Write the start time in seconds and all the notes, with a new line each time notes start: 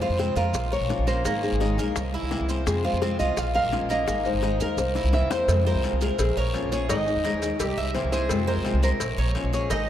0.01 G#3 C4 F4 C5, high bongo, maracas
0.09 F2
0.18 C3 F3 G#3 C4 F4, high bongo, short guiro, maracas
0.36 F2 G#3 C4 F4 A#4, high bongo, short guiro, maracas
0.53 A#1, muted steel-string acoustic guitar stroke, high bongo, long guiro, maracas
0.72 A#4 C#5, high bongo, maracas
0.81 A#1
0.89 F3 A#3 C#4 F4, high bongo, low bongo, short guiro, maracas
0.98 A#1
1.07 A#3 C#4 F4 C5, short guiro, maracas
1.25 G#1 D#3 G#3 A#3 D#4 G#4 A#4, high bongo, long guiro, maracas
1.42 G#3 D#4 G#4, high bongo, maracas
1.52 G#1
1.60 D#3 G#3 D#4 G#4, high bongo, short guiro, maracas
1.78 A#1 G#3 D#4 G#4 A#4, high bongo, short guiro, maracas
1.95 C2, muted steel-string acoustic guitar stroke, high bongo, long guiro, maracas
2.14 E4, high bongo, maracas
2.22 C2
2.29 C3 E3 A#3 C4 E4, high bongo, low bongo, short guiro, maracas
2.40 C2
2.48 A#3 C4 E4 C5, short guiro, maracas
2.65 F2 C3 F3 G#3 C4 F4 G#4, high bongo, long guiro, maracas
2.83 G#3 C4 F4 C5, high bongo, maracas
2.93 F2
3.00 C3 F3 G#3 C4 F4, high bongo, short guiro, maracas
3.19 C2 G#3 C4 F4 D#5, high bongo, short guiro, maracas
3.37 A#1 F5, muted steel-string acoustic guitar stroke, high bongo, long guiro, maracas
3.54 A#4 F5, high bongo, maracas
3.63 A#1
3.72 F3 A#3 C#4 F4, high bongo, low bongo, short guiro, maracas
3.80 A#1
3.89 A#3 C#4 F4 D#5, short guiro, maracas
4.06 G#1 D#3 G#3 A#3 D#4 G#4, high bongo, long guiro, maracas
4.24 G#3 D#4 G#4 C5, high bongo, maracas
4.33 G#1
4.42 D#3 G#3 D#4 G#4, high bongo, short guiro, maracas
4.59 D#2 G#3 D#4 G#4 A#4, short guiro, maracas
4.77 C2 C5, muted steel-string acoustic guitar stroke, high bongo, long guiro, maracas
4.95 E4, low bongo, maracas
5.04 C2
5.12 C3 E3 A#3 C4 E4 E5, low bongo, short guiro, maracas
5.21 E2
5.30 A#3 C4 E4 C5, low bongo, short guiro, maracas
5.48 F2 C3 F3 G#3 C4 F4, cowbell, long guiro, maracas
5.65 G#3 C4 F4 A#4 C5, maracas
5.74 C2
5.83 C3 F3 G#3 C4 F4, cowbell, short guiro, maracas
5.92 C2
6.01 G#3 C4 F4 G#4 A#4, short guiro, maracas
6.18 A#1 G#4, muted steel-string acoustic guitar stroke, cowbell, long guiro, maracas
6.36 A#1 A#4 C#5, maracas
6.54 F3 A#3 C#4 F4, cowbell, short guiro, maracas
6.63 A#1
6.72 A#3 C#4 F4 G#4 C#5, short guiro, maracas
6.88 G#1 D#3 G#3 D#4 G#4 D#5, cowbell, long guiro, maracas
7.07 G#3 D#4 G#4, maracas
7.16 D#2
7.24 D#3 G#3 D#4 G#4 A#4, cowbell, short guiro, maracas
7.33 D#2
7.42 G#3 D#4 G#4, cowbell, short guiro, maracas
7.59 C2 G4, muted steel-string acoustic guitar stroke, cowbell, long guiro, maracas
7.77 C2 E5, maracas
7.94 C3 E3 A#3 C4 E4 C5, cowbell, short guiro, maracas
8.04 C2
8.12 A#3 C4 E4 G#4 C5, short guiro, maracas
8.29 F2 C3 F3 G#3 C4 F4, cowbell, long guiro, maracas
8.47 G#3 C4 F4 A#4 C5, maracas
8.56 C2
8.64 C3 F3 G#3 C4 F4, cowbell, short guiro, maracas
8.73 C2
8.82 G#3 C4 F4 A#4 C5, short guiro, maracas
9.00 A#1 C#5, muted steel-string acoustic guitar stroke, cowbell, long guiro, maracas
9.17 A#1 C#5, maracas
9.35 F3 A#3 C#4 F4, cowbell, short guiro, maracas
9.43 A#1
9.52 A#3 C#4 F4 G#4 C#5, short guiro, maracas
9.70 G#1 D#3 G#3 D#4 G#4 D#5, cowbell, long guiro, maracas